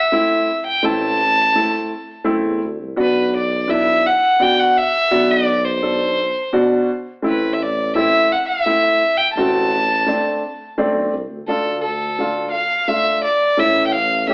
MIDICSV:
0, 0, Header, 1, 4, 480
1, 0, Start_track
1, 0, Tempo, 711744
1, 567, Time_signature, 3, 2, 24, 8
1, 4884, Tempo, 704225
1, 9721, End_track
2, 0, Start_track
2, 0, Title_t, "Violin"
2, 0, Program_c, 0, 40
2, 0, Note_on_c, 0, 76, 89
2, 424, Note_off_c, 0, 76, 0
2, 449, Note_on_c, 0, 79, 94
2, 569, Note_on_c, 0, 81, 117
2, 579, Note_off_c, 0, 79, 0
2, 1531, Note_off_c, 0, 81, 0
2, 2034, Note_on_c, 0, 71, 87
2, 2246, Note_off_c, 0, 71, 0
2, 2269, Note_on_c, 0, 74, 90
2, 2495, Note_on_c, 0, 76, 112
2, 2505, Note_off_c, 0, 74, 0
2, 2741, Note_on_c, 0, 78, 98
2, 2751, Note_off_c, 0, 76, 0
2, 2983, Note_on_c, 0, 79, 111
2, 2993, Note_off_c, 0, 78, 0
2, 3097, Note_on_c, 0, 78, 91
2, 3107, Note_off_c, 0, 79, 0
2, 3217, Note_on_c, 0, 76, 111
2, 3228, Note_off_c, 0, 78, 0
2, 3582, Note_on_c, 0, 74, 96
2, 3592, Note_off_c, 0, 76, 0
2, 3807, Note_on_c, 0, 72, 87
2, 3817, Note_off_c, 0, 74, 0
2, 4643, Note_off_c, 0, 72, 0
2, 4909, Note_on_c, 0, 71, 81
2, 5083, Note_on_c, 0, 76, 61
2, 5093, Note_off_c, 0, 71, 0
2, 5145, Note_on_c, 0, 74, 79
2, 5155, Note_off_c, 0, 76, 0
2, 5372, Note_off_c, 0, 74, 0
2, 5376, Note_on_c, 0, 76, 103
2, 5616, Note_on_c, 0, 78, 89
2, 5627, Note_off_c, 0, 76, 0
2, 5724, Note_off_c, 0, 78, 0
2, 5728, Note_on_c, 0, 76, 105
2, 6198, Note_on_c, 0, 79, 97
2, 6208, Note_off_c, 0, 76, 0
2, 6304, Note_off_c, 0, 79, 0
2, 6308, Note_on_c, 0, 81, 113
2, 7250, Note_off_c, 0, 81, 0
2, 7770, Note_on_c, 0, 69, 98
2, 7991, Note_off_c, 0, 69, 0
2, 7996, Note_on_c, 0, 69, 89
2, 8453, Note_off_c, 0, 69, 0
2, 8476, Note_on_c, 0, 77, 98
2, 8728, Note_on_c, 0, 76, 104
2, 8738, Note_off_c, 0, 77, 0
2, 8965, Note_off_c, 0, 76, 0
2, 8973, Note_on_c, 0, 74, 93
2, 9213, Note_on_c, 0, 76, 102
2, 9224, Note_off_c, 0, 74, 0
2, 9396, Note_off_c, 0, 76, 0
2, 9400, Note_on_c, 0, 79, 65
2, 9437, Note_on_c, 0, 77, 97
2, 9447, Note_off_c, 0, 79, 0
2, 9679, Note_off_c, 0, 77, 0
2, 9689, Note_on_c, 0, 76, 109
2, 9721, Note_off_c, 0, 76, 0
2, 9721, End_track
3, 0, Start_track
3, 0, Title_t, "Upright piano"
3, 0, Program_c, 1, 0
3, 81, Note_on_c, 1, 57, 67
3, 82, Note_on_c, 1, 60, 61
3, 90, Note_on_c, 1, 64, 86
3, 324, Note_off_c, 1, 57, 0
3, 324, Note_off_c, 1, 60, 0
3, 328, Note_off_c, 1, 64, 0
3, 558, Note_on_c, 1, 57, 80
3, 562, Note_on_c, 1, 60, 70
3, 567, Note_on_c, 1, 64, 84
3, 803, Note_off_c, 1, 57, 0
3, 805, Note_off_c, 1, 60, 0
3, 808, Note_off_c, 1, 64, 0
3, 1046, Note_on_c, 1, 60, 55
3, 1047, Note_on_c, 1, 57, 70
3, 1049, Note_on_c, 1, 64, 69
3, 1288, Note_off_c, 1, 60, 0
3, 1289, Note_off_c, 1, 57, 0
3, 1289, Note_off_c, 1, 64, 0
3, 1514, Note_on_c, 1, 57, 88
3, 1515, Note_on_c, 1, 60, 80
3, 1519, Note_on_c, 1, 64, 86
3, 1762, Note_off_c, 1, 57, 0
3, 1763, Note_off_c, 1, 60, 0
3, 1765, Note_off_c, 1, 64, 0
3, 1999, Note_on_c, 1, 59, 66
3, 2003, Note_on_c, 1, 62, 65
3, 2004, Note_on_c, 1, 66, 85
3, 2245, Note_off_c, 1, 59, 0
3, 2247, Note_off_c, 1, 62, 0
3, 2247, Note_off_c, 1, 66, 0
3, 2481, Note_on_c, 1, 59, 72
3, 2490, Note_on_c, 1, 64, 77
3, 2491, Note_on_c, 1, 62, 61
3, 2725, Note_off_c, 1, 59, 0
3, 2730, Note_off_c, 1, 62, 0
3, 2730, Note_off_c, 1, 64, 0
3, 2964, Note_on_c, 1, 59, 70
3, 2968, Note_on_c, 1, 62, 65
3, 2973, Note_on_c, 1, 66, 84
3, 3206, Note_off_c, 1, 59, 0
3, 3209, Note_off_c, 1, 62, 0
3, 3211, Note_off_c, 1, 66, 0
3, 3447, Note_on_c, 1, 66, 94
3, 3448, Note_on_c, 1, 62, 69
3, 3450, Note_on_c, 1, 59, 77
3, 3687, Note_off_c, 1, 62, 0
3, 3687, Note_off_c, 1, 66, 0
3, 3689, Note_off_c, 1, 59, 0
3, 3926, Note_on_c, 1, 47, 62
3, 3928, Note_on_c, 1, 62, 61
3, 3928, Note_on_c, 1, 69, 77
3, 4165, Note_off_c, 1, 47, 0
3, 4166, Note_off_c, 1, 62, 0
3, 4166, Note_off_c, 1, 69, 0
3, 4402, Note_on_c, 1, 47, 98
3, 4406, Note_on_c, 1, 62, 77
3, 4406, Note_on_c, 1, 66, 94
3, 4642, Note_off_c, 1, 47, 0
3, 4644, Note_off_c, 1, 62, 0
3, 4644, Note_off_c, 1, 66, 0
3, 4872, Note_on_c, 1, 57, 76
3, 4877, Note_on_c, 1, 60, 66
3, 4884, Note_on_c, 1, 64, 82
3, 5118, Note_off_c, 1, 57, 0
3, 5120, Note_off_c, 1, 60, 0
3, 5124, Note_off_c, 1, 64, 0
3, 5368, Note_on_c, 1, 57, 64
3, 5370, Note_on_c, 1, 60, 69
3, 5371, Note_on_c, 1, 64, 79
3, 5607, Note_off_c, 1, 57, 0
3, 5608, Note_off_c, 1, 60, 0
3, 5608, Note_off_c, 1, 64, 0
3, 5850, Note_on_c, 1, 57, 68
3, 5854, Note_on_c, 1, 60, 58
3, 5857, Note_on_c, 1, 64, 70
3, 6088, Note_off_c, 1, 57, 0
3, 6090, Note_off_c, 1, 60, 0
3, 6092, Note_off_c, 1, 64, 0
3, 6336, Note_on_c, 1, 57, 80
3, 6339, Note_on_c, 1, 60, 73
3, 6341, Note_on_c, 1, 66, 84
3, 6571, Note_off_c, 1, 57, 0
3, 6572, Note_off_c, 1, 60, 0
3, 6573, Note_off_c, 1, 66, 0
3, 6808, Note_on_c, 1, 57, 69
3, 6816, Note_on_c, 1, 60, 64
3, 6818, Note_on_c, 1, 62, 76
3, 7047, Note_off_c, 1, 57, 0
3, 7051, Note_off_c, 1, 60, 0
3, 7052, Note_off_c, 1, 62, 0
3, 7294, Note_on_c, 1, 57, 83
3, 7296, Note_on_c, 1, 60, 85
3, 7302, Note_on_c, 1, 62, 83
3, 7530, Note_off_c, 1, 57, 0
3, 7531, Note_off_c, 1, 60, 0
3, 7534, Note_off_c, 1, 62, 0
3, 7773, Note_on_c, 1, 57, 68
3, 7777, Note_on_c, 1, 62, 67
3, 7778, Note_on_c, 1, 65, 74
3, 8009, Note_off_c, 1, 57, 0
3, 8011, Note_off_c, 1, 62, 0
3, 8012, Note_off_c, 1, 65, 0
3, 8254, Note_on_c, 1, 57, 61
3, 8260, Note_on_c, 1, 62, 60
3, 8264, Note_on_c, 1, 65, 81
3, 8489, Note_off_c, 1, 57, 0
3, 8492, Note_off_c, 1, 62, 0
3, 8494, Note_off_c, 1, 65, 0
3, 8725, Note_on_c, 1, 57, 67
3, 8729, Note_on_c, 1, 65, 71
3, 8731, Note_on_c, 1, 62, 59
3, 8964, Note_off_c, 1, 57, 0
3, 8966, Note_off_c, 1, 65, 0
3, 8967, Note_off_c, 1, 62, 0
3, 9199, Note_on_c, 1, 57, 77
3, 9204, Note_on_c, 1, 61, 68
3, 9207, Note_on_c, 1, 64, 82
3, 9440, Note_off_c, 1, 57, 0
3, 9443, Note_off_c, 1, 61, 0
3, 9444, Note_off_c, 1, 64, 0
3, 9680, Note_on_c, 1, 57, 65
3, 9688, Note_on_c, 1, 61, 67
3, 9694, Note_on_c, 1, 67, 79
3, 9721, Note_off_c, 1, 57, 0
3, 9721, Note_off_c, 1, 61, 0
3, 9721, Note_off_c, 1, 67, 0
3, 9721, End_track
4, 0, Start_track
4, 0, Title_t, "Tuba"
4, 0, Program_c, 2, 58
4, 567, Note_on_c, 2, 33, 92
4, 1144, Note_off_c, 2, 33, 0
4, 1530, Note_on_c, 2, 42, 62
4, 1638, Note_off_c, 2, 42, 0
4, 1646, Note_on_c, 2, 40, 78
4, 1756, Note_off_c, 2, 40, 0
4, 1773, Note_on_c, 2, 38, 84
4, 1880, Note_off_c, 2, 38, 0
4, 1893, Note_on_c, 2, 36, 71
4, 2000, Note_off_c, 2, 36, 0
4, 2007, Note_on_c, 2, 35, 93
4, 2871, Note_off_c, 2, 35, 0
4, 3447, Note_on_c, 2, 35, 99
4, 4308, Note_off_c, 2, 35, 0
4, 4884, Note_on_c, 2, 33, 94
4, 5749, Note_off_c, 2, 33, 0
4, 6322, Note_on_c, 2, 33, 98
4, 6900, Note_off_c, 2, 33, 0
4, 7284, Note_on_c, 2, 33, 69
4, 7393, Note_off_c, 2, 33, 0
4, 7397, Note_on_c, 2, 35, 80
4, 7509, Note_off_c, 2, 35, 0
4, 7525, Note_on_c, 2, 36, 84
4, 7633, Note_off_c, 2, 36, 0
4, 7650, Note_on_c, 2, 38, 63
4, 7756, Note_off_c, 2, 38, 0
4, 7764, Note_on_c, 2, 38, 82
4, 8626, Note_off_c, 2, 38, 0
4, 9206, Note_on_c, 2, 33, 90
4, 9721, Note_off_c, 2, 33, 0
4, 9721, End_track
0, 0, End_of_file